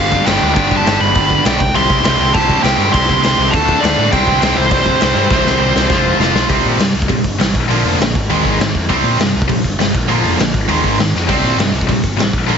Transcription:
Already playing: picked electric bass G1, distorted electric guitar G2 D3 G3 B3 D4 G4
0.00 lead electric guitar F5
0.12 kick
0.26 picked electric bass G1, distorted electric guitar G2 D3 G3 B3 D4 G4, lead electric guitar G5, snare, crash
0.41 picked electric bass D2
0.54 picked electric bass G1, distorted electric guitar G2 D3 G3 B3 D4 G4, lead electric guitar G5, kick, crash
0.71 picked electric bass G1, kick
0.77 lead electric guitar A5
0.85 picked electric bass G1, distorted electric guitar G2 D3 G3 B3 D4 G4, snare, crash
1.01 picked electric bass G1, lead electric guitar B5
1.15 picked electric bass G1, distorted electric guitar G2 D3 G3 B3 D4 G4, kick, crash
1.30 kick
1.45 picked electric bass B1, distorted electric guitar G2 D3 G3 B3 D4 G4, lead electric guitar G5, snare, crash
1.60 picked electric bass C2, kick
1.74 picked electric bass C2, distorted electric guitar C3 G3 C4 E4 G4, lead electric guitar C6, crash
1.90 picked electric bass C2, kick
2.03 picked electric bass C2, distorted electric guitar C3 G3 C4 E4 G4, lead electric guitar C6, snare, crash
2.20 picked electric bass C2
2.34 picked electric bass C2, distorted electric guitar C3 G3 C4 E4 G4, lead electric guitar A5, kick, crash
2.49 kick
2.63 picked electric bass C2, distorted electric guitar C3 G3 C4 E4 G4, lead electric guitar G5, snare, crash
2.78 picked electric bass G2
2.92 picked electric bass C2, distorted electric guitar C3 G3 C4 E4 G4, lead electric guitar C6, kick, crash
3.09 picked electric bass C2, kick
3.22 picked electric bass C2, distorted electric guitar C3 G3 C4 E4 G4, lead electric guitar C6, snare, crash
3.38 picked electric bass C2
3.51 picked electric bass D2, distorted electric guitar D3 A3 D4 A4, lead electric guitar A5, kick, crash
3.69 kick
3.81 picked electric bass D2, distorted electric guitar D3 A3 D4 A4, lead electric guitar D5, crash
3.85 snare
3.98 picked electric bass A2
4.11 picked electric bass C2, distorted electric guitar C3 E3 G3 C4 E4 C5, lead electric guitar G5, kick, crash
4.27 picked electric bass C2, kick
4.40 picked electric bass C2, distorted electric guitar C3 E3 G3 C4 E4 C5, lead electric guitar G5, snare, crash
4.57 picked electric bass C2, lead electric guitar C5
4.69 picked electric bass C2, distorted electric guitar C3 E3 G3 C4 E4 C5, lead electric guitar C5, kick, crash
4.86 kick
4.99 picked electric bass C2, distorted electric guitar C3 E3 G3 C4 E4 C5, snare, crash
5.15 picked electric bass G2
5.30 picked electric bass C2, distorted electric guitar C3 E3 G3 C4 E4 C5, kick, snare
5.45 picked electric bass C2, snare
5.59 picked electric bass C2, distorted electric guitar C3 E3 G3 C4 E4 C5
5.76 picked electric bass C2, snare
5.88 picked electric bass F1, overdriven electric guitar F2 C3, distorted electric guitar F3 C4 F4 C5, kick, snare
6.19 picked electric bass F1, overdriven electric guitar F2 C3, distorted electric guitar F3 C4 F4 C5, snare
6.33 picked electric bass B1, snare
6.49 picked electric bass C2, distorted electric guitar C3 G3 C4, kick, open hi-hat
6.65 picked electric bass A#2, open hi-hat
6.78 picked electric bass G2, distorted electric guitar C3 G3, snare, open hi-hat
6.95 picked electric bass C2, open hi-hat
7.02 kick
7.08 picked electric bass A#1, distorted electric guitar C3 G3, kick, open hi-hat
7.24 picked electric bass G1, kick, open hi-hat
7.39 picked electric bass A1, distorted electric guitar C3 G3, snare, open hi-hat
7.55 picked electric bass A#1, kick, open hi-hat
7.68 picked electric bass A#1, distorted electric guitar A#2 D3 F3, overdriven electric guitar A#3, open hi-hat
7.85 picked electric bass F1, open hi-hat
7.99 picked electric bass A#1, distorted electric guitar A#2 D3, overdriven electric guitar F3, snare, open hi-hat
8.15 picked electric bass G#1, kick, open hi-hat
8.29 picked electric bass D#2, distorted electric guitar G#2 D#3 G#3, open hi-hat
8.45 picked electric bass G#1, kick, open hi-hat
8.59 picked electric bass G#1, distorted electric guitar G#2 D#3, snare, open hi-hat
8.75 picked electric bass F2, kick, open hi-hat
8.89 picked electric bass C2, distorted electric guitar C3 G3 C4, kick, open hi-hat
9.03 picked electric bass A#2, open hi-hat
9.19 picked electric bass G2, distorted electric guitar C3 G3, snare, open hi-hat
9.34 picked electric bass C2, open hi-hat
9.42 kick
9.48 picked electric bass A#1, distorted electric guitar C3 G3, kick, open hi-hat
9.64 picked electric bass G1, kick, open hi-hat
9.79 picked electric bass G1, distorted electric guitar C3 G3, snare, open hi-hat
9.95 picked electric bass A#1, kick, open hi-hat
10.09 picked electric bass A#1, distorted electric guitar A#2 D3 F3, overdriven electric guitar A#3, open hi-hat
10.24 picked electric bass F1, open hi-hat
10.38 picked electric bass A#1, distorted electric guitar A#2 D3, overdriven electric guitar F3, snare, open hi-hat
10.54 picked electric bass G#1, kick, open hi-hat
10.68 picked electric bass D#2, distorted electric guitar G#2 D#3 G#3, open hi-hat
10.84 picked electric bass G#1, kick, open hi-hat
10.98 picked electric bass G#1, distorted electric guitar G#2 D#3, snare, open hi-hat
11.14 picked electric bass F2, snare
11.27 picked electric bass C2, distorted electric guitar C3 G3 C4, kick, crash
11.43 picked electric bass A#2, open hi-hat
11.57 picked electric bass G2, distorted electric guitar C3 G3, snare, open hi-hat
11.72 picked electric bass C2, open hi-hat
11.81 kick
11.87 picked electric bass A#1, distorted electric guitar C3 G3, kick, open hi-hat
12.04 picked electric bass G1, kick, open hi-hat
12.17 picked electric bass A1, distorted electric guitar C3 G3, snare, open hi-hat
12.33 picked electric bass A#1, kick, open hi-hat
12.46 picked electric bass A#1, distorted electric guitar A#2 D3 F3, overdriven electric guitar A#3, open hi-hat

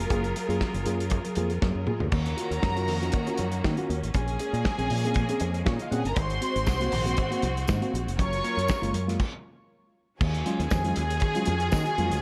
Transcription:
Already playing: string section F#3 F4 G#4 A#4
0.10 fingered electric bass F#1, tine electric piano A#3 F4 G#4, kick, closed hi-hat, muted conga
0.24 closed hi-hat
0.35 tine electric piano F#3, closed hi-hat, muted conga
0.49 fingered electric bass F#2, tine electric piano A#3 F4 G#4, closed hi-hat
0.61 tine electric piano F#3, kick, snare, high conga
0.74 fingered electric bass F#1, closed hi-hat
0.86 fingered electric bass F#2, tine electric piano A#3 F4 G#4, closed hi-hat
1.00 tine electric piano F4 G#4, closed hi-hat
1.10 tine electric piano F4 G#4, kick, closed hi-hat
1.25 tine electric piano F#3, closed hi-hat
1.35 fingered electric bass F2, tine electric piano A#3 F4 G#4, closed hi-hat, muted conga
1.50 closed hi-hat
1.62 fingered electric bass F#2, tine electric piano F#3, kick, snare, high conga
1.75 fingered electric bass F#2
1.86 tine electric piano A#3 F4 G#4, mid tom, high conga
2.00 fingered electric bass D2, tine electric piano F4 G#4, floor tom
2.12 fingered electric bass D#2, tine electric piano D#3 A#3, string section D#3 A#3 C#4 F#4 A#4 A#5, kick, crash, muted conga
2.26 closed hi-hat
2.37 tine electric piano F4 F#4, closed hi-hat, muted conga
2.51 fingered electric bass D#2, closed hi-hat
2.63 fingered electric bass F#2, kick, snare, high conga
2.76 tine electric piano C#4 F4 F#4, closed hi-hat
2.88 fingered electric bass F2, tine electric piano D#3 A#3, open hi-hat
3.02 tine electric piano C#4 F4 F#4, closed hi-hat
3.12 tine electric piano D#3 A#3, kick, closed hi-hat
3.27 tine electric piano C#4 F4 F#4, closed hi-hat
3.37 fingered electric bass F#2, closed hi-hat, muted conga, low conga
3.52 closed hi-hat
3.64 tine electric piano D#3 A#3, fingered electric bass D#3, kick, snare, high conga
3.77 tine electric piano C#4 F4 F#4, closed hi-hat
3.89 fingered electric bass D#2, tine electric piano F4 F#4, closed hi-hat, high conga
4.03 fingered electric bass A1, closed hi-hat
4.14 fingered electric bass A#1, tine electric piano A#2 F3, string section G#3 A#3 G#4 G#5, kick, closed hi-hat, muted conga
4.28 closed hi-hat
4.39 tine electric piano C#4 G#4, closed hi-hat, muted conga
4.53 fingered electric bass A#2, closed hi-hat
4.65 kick, snare, high conga
4.78 fingered electric bass A#1, tine electric piano C4 C#4 G#4, closed hi-hat
4.90 fingered electric bass A#2, tine electric piano A#2 F3, open hi-hat
5.04 tine electric piano C4 C#4 G#4, closed hi-hat
5.14 tine electric piano A#2 F3, kick, closed hi-hat
5.29 tine electric piano C4 C#4 G#4, closed hi-hat
5.40 fingered electric bass F2, tine electric piano C#4 G#4, closed hi-hat, muted conga
5.54 closed hi-hat
5.66 fingered electric bass A#2, string section C#4 C#5, kick, snare, high conga
5.74 string section D#4 D#5
5.79 string section F4 F5, closed hi-hat
5.91 fingered electric bass A#2, tine electric piano C4 C#4 G#4, string section F#4 F#5, closed hi-hat, high conga
5.99 string section G#4 G#5
6.05 fingered electric bass G1, string section A#4 A#5, closed hi-hat
6.16 fingered electric bass G#1, tine electric piano G#2 D#3, string section C4 F#4 C5 C6, kick, closed hi-hat, muted conga
6.30 closed hi-hat
6.41 tine electric piano C4 F#4, closed hi-hat, muted conga
6.56 fingered electric bass G#1, closed hi-hat
6.67 fingered electric bass C2, kick, snare, tambourine, high conga
6.80 tine electric piano A#3 C4 F#4, closed hi-hat
6.92 fingered electric bass A#1, tine electric piano G#2 D#3, open hi-hat
7.05 tine electric piano A#3 C4 F#4, closed hi-hat
7.17 tine electric piano G#2 D#3, kick, closed hi-hat
7.31 tine electric piano A#3 C4 F#4, closed hi-hat
7.42 fingered electric bass C2, tine electric piano C4 F#4, closed hi-hat, muted conga, low conga
7.57 closed hi-hat
7.68 tine electric piano G#2 D#3, fingered electric bass G#2, kick, snare, tambourine, high conga
7.81 tine electric piano A#3 C4 F#4, closed hi-hat
7.93 fingered electric bass A#1, tine electric piano C4 F#4, closed hi-hat, high conga
8.07 fingered electric bass F1, closed hi-hat
8.17 fingered electric bass F#1, string section F#3 C#4 F4 A#4 C#5 C#6, tine electric piano F#3, kick, closed hi-hat, muted conga
8.33 closed hi-hat
8.44 tine electric piano A#3 F4, closed hi-hat
8.57 fingered electric bass F#2, closed hi-hat
8.68 kick, snare, tambourine, high conga
8.82 fingered electric bass F#1, tine electric piano G#3 A#3 F4, closed hi-hat
8.94 fingered electric bass F#2, tine electric piano F#3, closed hi-hat
9.07 tine electric piano G#3 A#3 F4, snare, closed hi-hat
9.20 kick, crash
10.20 fingered electric bass D#2, string section D#3 C#4 F4 F#4 G#4 G#5, tine electric piano D#3, kick, crash, muted conga
10.34 closed hi-hat
10.46 tine electric piano F#3 G#3 C#4 F4, closed hi-hat, muted conga
10.59 fingered electric bass D#2, tine electric piano C#4 F4, closed hi-hat
10.71 fingered electric bass F2, tine electric piano D#3, kick, snare, tambourine, high conga
10.84 tine electric piano F#3 G#3 C#4 F4, closed hi-hat
10.96 fingered electric bass D#2, tine electric piano C#4 F4, closed hi-hat
11.10 closed hi-hat
11.20 tine electric piano D#3, kick, closed hi-hat
11.35 tine electric piano F#3 G#3 C#4 F4, closed hi-hat
11.46 fingered electric bass F2, tine electric piano C#4 F4, closed hi-hat, muted conga, low conga
11.60 closed hi-hat
11.72 fingered electric bass D#3, tine electric piano D#3, kick, snare, tambourine, high conga
11.86 closed hi-hat
11.98 fingered electric bass F2, tine electric piano F#3 G#3 C#4 F4, closed hi-hat, high conga
12.11 fingered electric bass D2, tine electric piano C#4 F4, closed hi-hat

